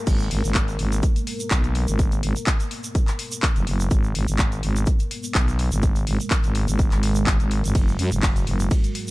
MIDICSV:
0, 0, Header, 1, 4, 480
1, 0, Start_track
1, 0, Key_signature, 5, "minor"
1, 0, Tempo, 480000
1, 70, Time_signature, 4, 2, 24, 8
1, 9109, End_track
2, 0, Start_track
2, 0, Title_t, "Analog synth pad"
2, 0, Program_c, 0, 89
2, 0, Note_on_c, 0, 70, 85
2, 71, Note_on_c, 0, 56, 81
2, 71, Note_on_c, 0, 59, 74
2, 7710, Note_off_c, 0, 70, 0
2, 7711, Note_off_c, 0, 59, 0
2, 7751, Note_on_c, 0, 66, 73
2, 7752, Note_on_c, 0, 70, 89
2, 9109, Note_off_c, 0, 56, 0
2, 9109, Note_off_c, 0, 66, 0
2, 9109, Note_off_c, 0, 70, 0
2, 9109, End_track
3, 0, Start_track
3, 0, Title_t, "FM bass"
3, 0, Program_c, 1, 39
3, 70, Note_on_c, 1, 32, 102
3, 292, Note_off_c, 1, 32, 0
3, 310, Note_on_c, 1, 32, 102
3, 419, Note_off_c, 1, 32, 0
3, 439, Note_on_c, 1, 32, 95
3, 772, Note_off_c, 1, 32, 0
3, 790, Note_on_c, 1, 32, 97
3, 1012, Note_off_c, 1, 32, 0
3, 1510, Note_on_c, 1, 35, 98
3, 1860, Note_off_c, 1, 35, 0
3, 1881, Note_on_c, 1, 32, 99
3, 2213, Note_off_c, 1, 32, 0
3, 2231, Note_on_c, 1, 32, 94
3, 2340, Note_off_c, 1, 32, 0
3, 3561, Note_on_c, 1, 30, 100
3, 3653, Note_off_c, 1, 30, 0
3, 3670, Note_on_c, 1, 30, 93
3, 3893, Note_off_c, 1, 30, 0
3, 3910, Note_on_c, 1, 32, 96
3, 4133, Note_off_c, 1, 32, 0
3, 4149, Note_on_c, 1, 32, 96
3, 4259, Note_off_c, 1, 32, 0
3, 4280, Note_on_c, 1, 32, 93
3, 4613, Note_off_c, 1, 32, 0
3, 4630, Note_on_c, 1, 32, 95
3, 4853, Note_off_c, 1, 32, 0
3, 5350, Note_on_c, 1, 35, 98
3, 5699, Note_off_c, 1, 35, 0
3, 5720, Note_on_c, 1, 32, 101
3, 6053, Note_off_c, 1, 32, 0
3, 6070, Note_on_c, 1, 32, 100
3, 6179, Note_off_c, 1, 32, 0
3, 6440, Note_on_c, 1, 32, 97
3, 6659, Note_off_c, 1, 32, 0
3, 6680, Note_on_c, 1, 32, 99
3, 6899, Note_off_c, 1, 32, 0
3, 6920, Note_on_c, 1, 32, 103
3, 7379, Note_off_c, 1, 32, 0
3, 7400, Note_on_c, 1, 32, 97
3, 7619, Note_off_c, 1, 32, 0
3, 7640, Note_on_c, 1, 32, 97
3, 7733, Note_off_c, 1, 32, 0
3, 7750, Note_on_c, 1, 30, 97
3, 7973, Note_off_c, 1, 30, 0
3, 7990, Note_on_c, 1, 42, 99
3, 8099, Note_off_c, 1, 42, 0
3, 8120, Note_on_c, 1, 30, 93
3, 8452, Note_off_c, 1, 30, 0
3, 8470, Note_on_c, 1, 30, 94
3, 8693, Note_off_c, 1, 30, 0
3, 9109, End_track
4, 0, Start_track
4, 0, Title_t, "Drums"
4, 70, Note_on_c, 9, 36, 121
4, 70, Note_on_c, 9, 42, 86
4, 70, Note_on_c, 9, 49, 77
4, 70, Note_on_c, 9, 82, 69
4, 170, Note_off_c, 9, 36, 0
4, 170, Note_off_c, 9, 42, 0
4, 170, Note_off_c, 9, 49, 0
4, 170, Note_off_c, 9, 82, 0
4, 197, Note_on_c, 9, 82, 38
4, 297, Note_off_c, 9, 82, 0
4, 310, Note_on_c, 9, 46, 106
4, 410, Note_off_c, 9, 46, 0
4, 440, Note_on_c, 9, 42, 37
4, 446, Note_on_c, 9, 82, 76
4, 540, Note_off_c, 9, 42, 0
4, 546, Note_off_c, 9, 82, 0
4, 547, Note_on_c, 9, 39, 124
4, 550, Note_on_c, 9, 36, 120
4, 550, Note_on_c, 9, 42, 81
4, 555, Note_on_c, 9, 82, 59
4, 647, Note_off_c, 9, 39, 0
4, 650, Note_off_c, 9, 36, 0
4, 650, Note_off_c, 9, 42, 0
4, 655, Note_off_c, 9, 82, 0
4, 680, Note_on_c, 9, 42, 38
4, 686, Note_on_c, 9, 82, 41
4, 780, Note_off_c, 9, 42, 0
4, 786, Note_off_c, 9, 82, 0
4, 790, Note_on_c, 9, 46, 96
4, 890, Note_off_c, 9, 46, 0
4, 920, Note_on_c, 9, 42, 56
4, 923, Note_on_c, 9, 82, 75
4, 1020, Note_off_c, 9, 42, 0
4, 1023, Note_off_c, 9, 82, 0
4, 1025, Note_on_c, 9, 82, 68
4, 1030, Note_on_c, 9, 36, 124
4, 1030, Note_on_c, 9, 42, 87
4, 1125, Note_off_c, 9, 82, 0
4, 1130, Note_off_c, 9, 36, 0
4, 1130, Note_off_c, 9, 42, 0
4, 1160, Note_on_c, 9, 42, 52
4, 1166, Note_on_c, 9, 82, 39
4, 1261, Note_off_c, 9, 42, 0
4, 1266, Note_off_c, 9, 82, 0
4, 1270, Note_on_c, 9, 46, 107
4, 1370, Note_off_c, 9, 46, 0
4, 1398, Note_on_c, 9, 82, 84
4, 1401, Note_on_c, 9, 42, 37
4, 1498, Note_off_c, 9, 82, 0
4, 1501, Note_off_c, 9, 42, 0
4, 1504, Note_on_c, 9, 82, 67
4, 1507, Note_on_c, 9, 39, 127
4, 1510, Note_on_c, 9, 36, 120
4, 1511, Note_on_c, 9, 42, 84
4, 1604, Note_off_c, 9, 82, 0
4, 1607, Note_off_c, 9, 39, 0
4, 1610, Note_off_c, 9, 36, 0
4, 1611, Note_off_c, 9, 42, 0
4, 1640, Note_on_c, 9, 42, 39
4, 1641, Note_on_c, 9, 82, 34
4, 1740, Note_off_c, 9, 42, 0
4, 1741, Note_off_c, 9, 82, 0
4, 1751, Note_on_c, 9, 46, 90
4, 1851, Note_off_c, 9, 46, 0
4, 1878, Note_on_c, 9, 82, 81
4, 1880, Note_on_c, 9, 42, 38
4, 1978, Note_off_c, 9, 82, 0
4, 1980, Note_off_c, 9, 42, 0
4, 1990, Note_on_c, 9, 36, 122
4, 1990, Note_on_c, 9, 82, 71
4, 1991, Note_on_c, 9, 42, 82
4, 2090, Note_off_c, 9, 36, 0
4, 2090, Note_off_c, 9, 82, 0
4, 2091, Note_off_c, 9, 42, 0
4, 2119, Note_on_c, 9, 82, 44
4, 2120, Note_on_c, 9, 42, 40
4, 2219, Note_off_c, 9, 82, 0
4, 2220, Note_off_c, 9, 42, 0
4, 2231, Note_on_c, 9, 46, 112
4, 2331, Note_off_c, 9, 46, 0
4, 2360, Note_on_c, 9, 42, 38
4, 2360, Note_on_c, 9, 82, 75
4, 2460, Note_off_c, 9, 42, 0
4, 2460, Note_off_c, 9, 82, 0
4, 2467, Note_on_c, 9, 39, 123
4, 2470, Note_on_c, 9, 36, 125
4, 2470, Note_on_c, 9, 42, 81
4, 2474, Note_on_c, 9, 82, 66
4, 2567, Note_off_c, 9, 39, 0
4, 2570, Note_off_c, 9, 36, 0
4, 2570, Note_off_c, 9, 42, 0
4, 2574, Note_off_c, 9, 82, 0
4, 2600, Note_on_c, 9, 42, 38
4, 2600, Note_on_c, 9, 82, 42
4, 2700, Note_off_c, 9, 42, 0
4, 2700, Note_off_c, 9, 82, 0
4, 2710, Note_on_c, 9, 46, 98
4, 2810, Note_off_c, 9, 46, 0
4, 2838, Note_on_c, 9, 82, 82
4, 2840, Note_on_c, 9, 42, 51
4, 2938, Note_off_c, 9, 82, 0
4, 2940, Note_off_c, 9, 42, 0
4, 2950, Note_on_c, 9, 36, 127
4, 2950, Note_on_c, 9, 42, 88
4, 2951, Note_on_c, 9, 82, 62
4, 3050, Note_off_c, 9, 36, 0
4, 3050, Note_off_c, 9, 42, 0
4, 3051, Note_off_c, 9, 82, 0
4, 3077, Note_on_c, 9, 39, 36
4, 3080, Note_on_c, 9, 42, 51
4, 3080, Note_on_c, 9, 82, 42
4, 3177, Note_off_c, 9, 39, 0
4, 3180, Note_off_c, 9, 42, 0
4, 3180, Note_off_c, 9, 82, 0
4, 3190, Note_on_c, 9, 46, 115
4, 3290, Note_off_c, 9, 46, 0
4, 3317, Note_on_c, 9, 82, 91
4, 3321, Note_on_c, 9, 42, 40
4, 3417, Note_off_c, 9, 82, 0
4, 3421, Note_off_c, 9, 42, 0
4, 3427, Note_on_c, 9, 39, 127
4, 3430, Note_on_c, 9, 36, 127
4, 3430, Note_on_c, 9, 42, 87
4, 3433, Note_on_c, 9, 82, 74
4, 3527, Note_off_c, 9, 39, 0
4, 3530, Note_off_c, 9, 36, 0
4, 3530, Note_off_c, 9, 42, 0
4, 3533, Note_off_c, 9, 82, 0
4, 3560, Note_on_c, 9, 42, 40
4, 3560, Note_on_c, 9, 82, 37
4, 3660, Note_off_c, 9, 42, 0
4, 3660, Note_off_c, 9, 82, 0
4, 3670, Note_on_c, 9, 46, 97
4, 3770, Note_off_c, 9, 46, 0
4, 3798, Note_on_c, 9, 82, 77
4, 3800, Note_on_c, 9, 42, 37
4, 3899, Note_off_c, 9, 82, 0
4, 3900, Note_off_c, 9, 42, 0
4, 3907, Note_on_c, 9, 82, 74
4, 3910, Note_on_c, 9, 36, 126
4, 3910, Note_on_c, 9, 42, 79
4, 4007, Note_off_c, 9, 82, 0
4, 4010, Note_off_c, 9, 36, 0
4, 4010, Note_off_c, 9, 42, 0
4, 4037, Note_on_c, 9, 82, 38
4, 4137, Note_off_c, 9, 82, 0
4, 4150, Note_on_c, 9, 46, 115
4, 4250, Note_off_c, 9, 46, 0
4, 4278, Note_on_c, 9, 82, 82
4, 4280, Note_on_c, 9, 42, 36
4, 4377, Note_off_c, 9, 82, 0
4, 4380, Note_off_c, 9, 42, 0
4, 4387, Note_on_c, 9, 39, 118
4, 4387, Note_on_c, 9, 82, 69
4, 4390, Note_on_c, 9, 36, 127
4, 4391, Note_on_c, 9, 42, 76
4, 4487, Note_off_c, 9, 39, 0
4, 4487, Note_off_c, 9, 82, 0
4, 4490, Note_off_c, 9, 36, 0
4, 4491, Note_off_c, 9, 42, 0
4, 4520, Note_on_c, 9, 42, 36
4, 4524, Note_on_c, 9, 82, 35
4, 4620, Note_off_c, 9, 42, 0
4, 4624, Note_off_c, 9, 82, 0
4, 4630, Note_on_c, 9, 46, 100
4, 4730, Note_off_c, 9, 46, 0
4, 4760, Note_on_c, 9, 42, 52
4, 4764, Note_on_c, 9, 82, 82
4, 4860, Note_off_c, 9, 42, 0
4, 4862, Note_off_c, 9, 82, 0
4, 4862, Note_on_c, 9, 82, 64
4, 4870, Note_on_c, 9, 36, 127
4, 4871, Note_on_c, 9, 42, 80
4, 4962, Note_off_c, 9, 82, 0
4, 4970, Note_off_c, 9, 36, 0
4, 4971, Note_off_c, 9, 42, 0
4, 4996, Note_on_c, 9, 82, 42
4, 5000, Note_on_c, 9, 42, 47
4, 5095, Note_off_c, 9, 82, 0
4, 5100, Note_off_c, 9, 42, 0
4, 5110, Note_on_c, 9, 46, 114
4, 5210, Note_off_c, 9, 46, 0
4, 5233, Note_on_c, 9, 82, 81
4, 5241, Note_on_c, 9, 42, 37
4, 5333, Note_off_c, 9, 82, 0
4, 5341, Note_off_c, 9, 42, 0
4, 5347, Note_on_c, 9, 39, 125
4, 5350, Note_on_c, 9, 36, 127
4, 5351, Note_on_c, 9, 42, 81
4, 5353, Note_on_c, 9, 82, 66
4, 5447, Note_off_c, 9, 39, 0
4, 5450, Note_off_c, 9, 36, 0
4, 5451, Note_off_c, 9, 42, 0
4, 5453, Note_off_c, 9, 82, 0
4, 5480, Note_on_c, 9, 42, 37
4, 5483, Note_on_c, 9, 82, 39
4, 5580, Note_off_c, 9, 42, 0
4, 5583, Note_off_c, 9, 82, 0
4, 5590, Note_on_c, 9, 46, 95
4, 5690, Note_off_c, 9, 46, 0
4, 5718, Note_on_c, 9, 82, 90
4, 5720, Note_on_c, 9, 42, 35
4, 5818, Note_off_c, 9, 82, 0
4, 5820, Note_off_c, 9, 42, 0
4, 5825, Note_on_c, 9, 82, 65
4, 5830, Note_on_c, 9, 36, 125
4, 5830, Note_on_c, 9, 42, 79
4, 5925, Note_off_c, 9, 82, 0
4, 5930, Note_off_c, 9, 36, 0
4, 5930, Note_off_c, 9, 42, 0
4, 5958, Note_on_c, 9, 82, 41
4, 5960, Note_on_c, 9, 42, 36
4, 6057, Note_off_c, 9, 82, 0
4, 6060, Note_off_c, 9, 42, 0
4, 6070, Note_on_c, 9, 46, 107
4, 6169, Note_off_c, 9, 46, 0
4, 6200, Note_on_c, 9, 42, 37
4, 6205, Note_on_c, 9, 82, 76
4, 6300, Note_off_c, 9, 42, 0
4, 6305, Note_off_c, 9, 82, 0
4, 6306, Note_on_c, 9, 39, 117
4, 6310, Note_on_c, 9, 36, 124
4, 6310, Note_on_c, 9, 42, 73
4, 6311, Note_on_c, 9, 82, 70
4, 6406, Note_off_c, 9, 39, 0
4, 6409, Note_off_c, 9, 42, 0
4, 6410, Note_off_c, 9, 36, 0
4, 6411, Note_off_c, 9, 82, 0
4, 6436, Note_on_c, 9, 82, 40
4, 6439, Note_on_c, 9, 42, 36
4, 6536, Note_off_c, 9, 82, 0
4, 6539, Note_off_c, 9, 42, 0
4, 6549, Note_on_c, 9, 46, 100
4, 6649, Note_off_c, 9, 46, 0
4, 6680, Note_on_c, 9, 42, 49
4, 6680, Note_on_c, 9, 82, 84
4, 6780, Note_off_c, 9, 42, 0
4, 6780, Note_off_c, 9, 82, 0
4, 6788, Note_on_c, 9, 82, 70
4, 6790, Note_on_c, 9, 36, 127
4, 6790, Note_on_c, 9, 42, 80
4, 6888, Note_off_c, 9, 82, 0
4, 6890, Note_off_c, 9, 36, 0
4, 6890, Note_off_c, 9, 42, 0
4, 6917, Note_on_c, 9, 39, 35
4, 6918, Note_on_c, 9, 82, 44
4, 6920, Note_on_c, 9, 42, 47
4, 7017, Note_off_c, 9, 39, 0
4, 7018, Note_off_c, 9, 82, 0
4, 7020, Note_off_c, 9, 42, 0
4, 7030, Note_on_c, 9, 46, 113
4, 7130, Note_off_c, 9, 46, 0
4, 7149, Note_on_c, 9, 82, 79
4, 7160, Note_on_c, 9, 42, 36
4, 7249, Note_off_c, 9, 82, 0
4, 7260, Note_off_c, 9, 42, 0
4, 7267, Note_on_c, 9, 39, 122
4, 7270, Note_on_c, 9, 36, 127
4, 7270, Note_on_c, 9, 42, 79
4, 7278, Note_on_c, 9, 82, 65
4, 7367, Note_off_c, 9, 39, 0
4, 7370, Note_off_c, 9, 36, 0
4, 7370, Note_off_c, 9, 42, 0
4, 7378, Note_off_c, 9, 82, 0
4, 7398, Note_on_c, 9, 82, 40
4, 7400, Note_on_c, 9, 42, 37
4, 7498, Note_off_c, 9, 82, 0
4, 7500, Note_off_c, 9, 42, 0
4, 7510, Note_on_c, 9, 46, 96
4, 7610, Note_off_c, 9, 46, 0
4, 7640, Note_on_c, 9, 42, 34
4, 7652, Note_on_c, 9, 82, 89
4, 7740, Note_off_c, 9, 42, 0
4, 7750, Note_on_c, 9, 36, 122
4, 7750, Note_on_c, 9, 42, 78
4, 7750, Note_on_c, 9, 51, 71
4, 7752, Note_off_c, 9, 82, 0
4, 7758, Note_on_c, 9, 82, 64
4, 7850, Note_off_c, 9, 36, 0
4, 7850, Note_off_c, 9, 42, 0
4, 7850, Note_off_c, 9, 51, 0
4, 7858, Note_off_c, 9, 82, 0
4, 7879, Note_on_c, 9, 82, 41
4, 7979, Note_off_c, 9, 82, 0
4, 7991, Note_on_c, 9, 46, 106
4, 8090, Note_off_c, 9, 46, 0
4, 8115, Note_on_c, 9, 82, 84
4, 8121, Note_on_c, 9, 42, 37
4, 8215, Note_off_c, 9, 82, 0
4, 8221, Note_off_c, 9, 42, 0
4, 8228, Note_on_c, 9, 39, 110
4, 8229, Note_on_c, 9, 82, 61
4, 8230, Note_on_c, 9, 36, 124
4, 8231, Note_on_c, 9, 42, 75
4, 8231, Note_on_c, 9, 51, 65
4, 8328, Note_off_c, 9, 39, 0
4, 8329, Note_off_c, 9, 82, 0
4, 8330, Note_off_c, 9, 36, 0
4, 8331, Note_off_c, 9, 42, 0
4, 8331, Note_off_c, 9, 51, 0
4, 8360, Note_on_c, 9, 42, 36
4, 8363, Note_on_c, 9, 82, 42
4, 8460, Note_off_c, 9, 42, 0
4, 8463, Note_off_c, 9, 82, 0
4, 8470, Note_on_c, 9, 46, 92
4, 8570, Note_off_c, 9, 46, 0
4, 8597, Note_on_c, 9, 82, 76
4, 8601, Note_on_c, 9, 42, 49
4, 8697, Note_off_c, 9, 82, 0
4, 8701, Note_off_c, 9, 42, 0
4, 8708, Note_on_c, 9, 82, 69
4, 8711, Note_on_c, 9, 36, 123
4, 8711, Note_on_c, 9, 42, 77
4, 8711, Note_on_c, 9, 51, 72
4, 8808, Note_off_c, 9, 82, 0
4, 8811, Note_off_c, 9, 36, 0
4, 8811, Note_off_c, 9, 42, 0
4, 8811, Note_off_c, 9, 51, 0
4, 8839, Note_on_c, 9, 82, 39
4, 8840, Note_on_c, 9, 42, 50
4, 8939, Note_off_c, 9, 82, 0
4, 8940, Note_off_c, 9, 42, 0
4, 8951, Note_on_c, 9, 46, 110
4, 9051, Note_off_c, 9, 46, 0
4, 9077, Note_on_c, 9, 82, 80
4, 9109, Note_off_c, 9, 82, 0
4, 9109, End_track
0, 0, End_of_file